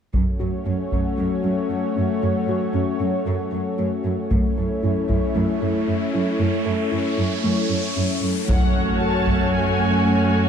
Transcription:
0.14 cello section F#2, synth pluck F#3, analog synth pad A3 C#4 F#4 C#5, taiko
0.40 cello section F#2, synth pluck F#4
0.66 cello section F#2, synth pluck C#4
0.92 cello section F#2, synth pluck C#4, taiko
1.18 cello section F#2, synth pluck F#3
1.44 cello section F#2, synth pluck C#4
1.70 cello section F#2, synth pluck A3
1.96 cello section F#2, synth pluck C#4
2.22 cello section F#2, synth pluck F#3
2.48 cello section F#2, synth pluck F#4
2.74 cello section F#2, synth pluck C#4
3.01 cello section F#2, synth pluck C#4
3.26 cello section F#2, synth pluck F#3
3.53 cello section F#2, synth pluck C#4
3.79 cello section F#2, synth pluck A3
4.05 cello section F#2, synth pluck C#4
4.31 cello section F#2, analog synth pad A3 C#4 E4 C#5, synth pluck A3, taiko, riser
4.58 cello section F#2, synth pluck A4
4.83 cello section F#2, synth pluck E4
5.09 cello section F#2, synth pluck E4, taiko
5.35 cello section F#2, synth pluck A3
5.61 cello section F#2, synth pluck E4
5.87 cello section F#2, synth pluck C#4
6.14 cello section F#2, synth pluck E4
6.40 cello section F#2, synth pluck A3
6.66 cello section F#2, synth pluck A4
6.92 cello section F#2, synth pluck E4
7.18 cello section F#2, synth pluck E4
7.44 cello section F#2, synth pluck A3
7.69 cello section F#2, synth pluck E4
7.97 cello section F#2, synth pluck C#4
8.22 cello section F#2, synth pluck E4
8.48 cello section F#2, synth pluck F#3, viola section A3 C#4, analog synth pad A3 C#4 F#4 C#5, violin section F#4 C#5 F#5, taiko, impact
8.74 synth pluck C#4
9.00 synth pluck F#4, violin section A5
9.27 synth pluck A3, taiko
9.53 synth pluck F#3, violin section G#5
9.80 synth pluck A3
10.06 synth pluck A3
10.31 synth pluck A3

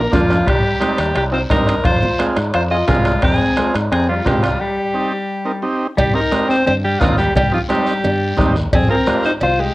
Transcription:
0.11 fingered electric bass F2, clean electric guitar F3, transistor combo organ A#3 D4 F4, alto saxophone F4, bombo low, bombo rim, high conga, low conga, low timbale, short guiro
0.30 bombo rim, low timbale, short guiro
0.46 fingered electric bass C2, clean electric guitar G3, alto saxophone G4, bombo low, bombo rim, high timbale, long guiro
0.80 transistor combo organ C4 D#4 G4, bombo rim, high conga, high timbale, short guiro
0.98 fingered electric bass D#2, bombo rim, high timbale, short guiro
1.15 fingered electric bass C2, clean electric guitar G3, alto saxophone G4, bombo rim, high timbale, long guiro
1.32 transistor combo organ C4 D#4 F4, clean electric guitar C4, alto saxophone C5
1.50 fingered electric bass G2, transistor combo organ C4 D#4 G4, clean electric guitar D#4, alto saxophone A#4, bombo low, bombo rim, high conga, high timbale, short guiro
1.67 bombo rim, high timbale, short guiro
1.84 fingered electric bass F2, clean electric guitar F4, alto saxophone C5, bombo low, bombo rim, high timbale, long guiro
2.03 high conga, low conga
2.19 transistor combo organ C4 F4 G#4, bombo rim, high conga, high timbale, short guiro
2.36 fingered electric bass G#2, bombo rim, high timbale, short guiro
2.54 fingered electric bass F2, clean electric guitar F4, alto saxophone C5, bombo rim, high timbale, long guiro
2.71 transistor combo organ C4 F4 G#4, clean electric guitar F4, alto saxophone D#5
2.88 fingered electric bass C2, clean electric guitar G#3, transistor combo organ C4 F4 G#4, alto saxophone F4, bombo low, bombo rim, high conga, low conga, high timbale, low timbale, short guiro
3.05 bombo rim, high timbale, short guiro
3.22 fingered electric bass F2, clean electric guitar C4, alto saxophone G#4, bombo low, bombo rim, high timbale, long guiro
3.41 high conga
3.57 transistor combo organ C4 F4 G#4, bombo rim, high conga, high timbale, short guiro
3.74 fingered electric bass G#2, bombo rim, high timbale, short guiro
3.92 fingered electric bass F2, clean electric guitar C4, alto saxophone G#4, bombo rim, high timbale, long guiro
4.08 clean electric guitar G3, transistor combo organ C4 F4 G4, alto saxophone F4
4.25 fingered electric bass C2, clean electric guitar G#3, transistor combo organ C4 F4 G4, alto saxophone G4, bombo low, bombo rim, high conga, high timbale, low timbale, short guiro
4.43 clean electric guitar G3, alto saxophone F4, bombo rim, high timbale, short guiro
4.60 clean electric guitar G3, alto saxophone G4
4.94 transistor combo organ C4 D#4 G4
5.45 transistor combo organ C4 D#4 A#4
5.62 transistor combo organ C4 D#4 G4
5.97 fingered electric bass C2, clean electric guitar G3, alto saxophone G4, bombo low, cowbell, high conga, long guiro
6.13 transistor combo organ C4 D#4 G4, clean electric guitar D#4, alto saxophone A#4
6.31 transistor combo organ C4 D#4 G4, bombo rim, high conga, short guiro
6.49 clean electric guitar C4, alto saxophone C5, short guiro
6.66 fingered electric bass G2, clean electric guitar C4, alto saxophone C5, cowbell, high conga, low conga, long guiro
6.84 clean electric guitar G3, alto saxophone G4
7.00 fingered electric bass D#2, transistor combo organ C4 D#4 F4, clean electric guitar C4, alto saxophone F4, bombo low, bombo rim, high conga, low timbale, short guiro
7.18 clean electric guitar G3, alto saxophone G4, short guiro
7.35 fingered electric bass C2, clean electric guitar G3, alto saxophone G4, bombo low, cowbell, high conga, low conga, long guiro
7.52 clean electric guitar F3, transistor combo organ C4 D#4 G4, alto saxophone F4
7.69 clean electric guitar G3, transistor combo organ C4 D#4 G4, alto saxophone G4, bombo rim, high conga, short guiro
7.87 short guiro
8.04 fingered electric bass G2, cowbell, high conga, low conga, long guiro
8.37 fingered electric bass D#2, transistor combo organ C4 D#4 G4, bombo low, bombo rim, high conga, short guiro
8.56 short guiro
8.73 fingered electric bass F2, clean electric guitar C4, alto saxophone G#4, bombo low, cowbell, long guiro
8.89 transistor combo organ C4 F4 G#4, clean electric guitar C4, alto saxophone A#4
9.07 transistor combo organ C4 F4 G4, bombo rim, high conga, short guiro
9.23 clean electric guitar D#4, alto saxophone C5, short guiro
9.40 fingered electric bass C2, clean electric guitar F4, alto saxophone C5, cowbell, high conga, low conga, long guiro
9.60 clean electric guitar G#3, alto saxophone G4

